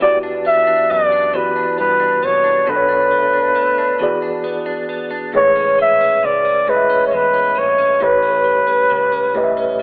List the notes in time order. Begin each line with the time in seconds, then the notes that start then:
Already playing: E4
0.01 E2 E3 B3 F#4 G4 D5
0.23 D4
0.45 B3 E5
0.67 D4
0.90 F#2 B3 D5
1.12 D4
1.34 E3 B3 F#4 G4 B4
1.56 D4
1.78 G2 B3 B4
2.00 D4
2.23 C2 B3 C#5
2.44 D4
2.67 B1 B2 B3 D4 A4 B4
2.76 C#5
2.89 D4
3.11 A3
3.33 D4
3.55 D2 A3
3.78 D4
3.99 E2 E3 B3 F#4 G#4 D5
4.22 D4
4.44 B3
4.66 D4
4.89 A#1 B3
5.11 D4
5.33 A1 A2 G#3 G#4 B4 C#5
5.56 C#4
5.79 G#3 E5
6.01 C#4
6.23 C#2 G#3 D5
6.45 C#4
6.67 A2 G#3 G#4 B4 D#5
6.77 E5
6.89 C#4
7.07 C#5
7.11 E2 G#3 B4
7.34 C#4
7.56 A#1 G#3 C#5
7.78 C#4
8.00 A1 A2 A3 G4 B4 C#5
8.22 C#4
8.44 G3
8.67 C#4
8.90 C#2 G3
9.12 C#4
9.34 A2 A3 G4 B4 D#5
9.44 E5
9.57 C#4
9.79 G3